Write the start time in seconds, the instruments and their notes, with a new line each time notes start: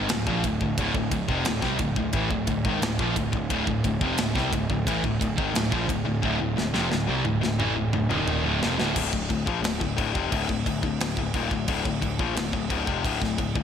0.09 picked electric bass D1, distorted electric guitar D2 A2, snare, ride
0.27 picked electric bass A#1, distorted electric guitar A#2 F3, kick
0.44 picked electric bass D1, distorted electric guitar D2 A2, kick, ride
0.61 picked electric bass D1, distorted electric guitar D2 A2, kick
0.78 picked electric bass D1, distorted electric guitar D2 A2, kick, ride
0.94 picked electric bass D1, distorted electric guitar D2 A2, kick
1.11 picked electric bass D1, distorted electric guitar D2 A2, kick, ride
1.28 picked electric bass F1, distorted electric guitar F2 C3, kick
1.45 picked electric bass D1, distorted electric guitar D2 A2, snare, ride
1.61 picked electric bass C2, distorted electric guitar C3 G3, kick, snare
1.79 picked electric bass D1, distorted electric guitar D2 A2, kick, ride
1.96 picked electric bass D1, distorted electric guitar D2 A2, kick
2.13 picked electric bass A1, distorted electric guitar A2 E3, kick, ride
2.30 picked electric bass D1, distorted electric guitar D2 A2, kick
2.34 distorted electric guitar D2 A2
2.47 picked electric bass D1, distorted electric guitar D2 A2, kick, ride
2.65 picked electric bass G#1, distorted electric guitar G#2 D#3, kick
2.69 distorted electric guitar D#3
2.82 picked electric bass D1, distorted electric guitar D2 A2, snare, ride
2.99 picked electric bass A#1, distorted electric guitar A#2 F3, kick
3.15 picked electric bass D1, distorted electric guitar D2 A2, kick, ride
3.32 picked electric bass D1, distorted electric guitar D2 A2, kick
3.36 distorted electric guitar D2
3.50 picked electric bass D1, distorted electric guitar D2 A2, kick, ride
3.67 picked electric bass D1, distorted electric guitar D2 A2, kick
3.84 picked electric bass D1, distorted electric guitar D2 A2, kick, ride
4.01 picked electric bass F1, distorted electric guitar F2 C3, kick
4.18 picked electric bass D1, distorted electric guitar D2 A2, snare, ride
4.35 picked electric bass C2, distorted electric guitar C3 G3, kick, snare
4.53 picked electric bass D1, distorted electric guitar D2 A2, kick, ride
4.70 picked electric bass D1, distorted electric guitar D2 A2, kick
4.87 picked electric bass A1, distorted electric guitar A2 E3, kick, ride
5.04 picked electric bass D1, distorted electric guitar D2 A2, kick
5.21 picked electric bass D1, distorted electric guitar D2 A2, kick, ride
5.38 picked electric bass G#1, distorted electric guitar G#2 D#3, kick
5.55 picked electric bass D1, distorted electric guitar D2 A2, snare, ride
5.71 picked electric bass A#1, distorted electric guitar A#2 F3, kick
5.89 picked electric bass D1, distorted electric guitar D2 A2, kick, ride
6.05 picked electric bass D1, distorted electric guitar D2 A2
6.22 picked electric bass D1, distorted electric guitar D2 A2, kick
6.39 picked electric bass D1, distorted electric guitar D2 A2
6.57 picked electric bass D1, distorted electric guitar D2 A2, snare
6.74 picked electric bass F1, distorted electric guitar F2 C3, snare
6.91 picked electric bass D1, distorted electric guitar D2 A2, snare
7.07 picked electric bass C2, distorted electric guitar C3 G3
7.25 picked electric bass D1, distorted electric guitar D2 A2, mid tom
7.41 picked electric bass D1, distorted electric guitar D2 A2, snare
7.59 picked electric bass A1, distorted electric guitar A2 E3, mid tom
7.76 picked electric bass D1, distorted electric guitar D2 A2
7.93 picked electric bass D1, distorted electric guitar D2 A2, mid tom
8.09 picked electric bass D#1, distorted electric guitar D#2 A#2 D#3, mid tom
8.28 floor tom
8.43 picked electric bass D1, distorted electric guitar D2 A2
8.60 distorted electric guitar F2 C3, snare
8.64 picked electric bass F1
8.78 picked electric bass D1, distorted electric guitar D2 A2, snare
8.95 picked electric bass D1, distorted electric guitar D2 A2, kick, crash
9.12 picked electric bass D1, distorted electric guitar D2 A2, kick
9.29 picked electric bass D1, distorted electric guitar D2 A2, kick, crash
9.46 picked electric bass A#1, distorted electric guitar A#2 F3, kick
9.62 picked electric bass D1, distorted electric guitar D2 A2, snare, crash
9.80 picked electric bass D1, distorted electric guitar D2 A2, kick
9.96 picked electric bass D1, distorted electric guitar D2 A2, kick, crash
10.13 picked electric bass F1, distorted electric guitar F2 C3, kick
10.31 picked electric bass D1, distorted electric guitar D2 A2, kick, crash
10.48 picked electric bass D1, distorted electric guitar D2 A2, kick
10.66 picked electric bass D1, distorted electric guitar D2 A2, kick, crash
10.82 picked electric bass D1, distorted electric guitar D2 A2, kick
11.00 picked electric bass D1, distorted electric guitar D2 A2, snare, crash
11.17 picked electric bass D1, distorted electric guitar D2 A2, kick
11.34 picked electric bass D#1, distorted electric guitar D#2 A#2, kick, crash
11.51 picked electric bass D1, distorted electric guitar D2 A2, kick
11.68 picked electric bass D1, distorted electric guitar D2 A2, kick, crash
11.85 picked electric bass D1, distorted electric guitar D2 A2, kick
12.02 picked electric bass D1, distorted electric guitar D2 A2, kick, crash
12.19 picked electric bass A#1, distorted electric guitar A#2 F3, kick
12.36 picked electric bass D1, distorted electric guitar D2 A2, snare, crash
12.52 picked electric bass D1, distorted electric guitar D2 A2, kick
12.70 picked electric bass D1, distorted electric guitar D2 A2, kick, crash
12.87 picked electric bass F1, distorted electric guitar F2 C3, kick
13.04 picked electric bass D1, distorted electric guitar D2 A2, kick, crash
13.20 picked electric bass D1, distorted electric guitar D2 A2, kick, snare
13.38 picked electric bass D1, distorted electric guitar D2 A2, kick, crash
13.55 picked electric bass D1, distorted electric guitar D2 A2, kick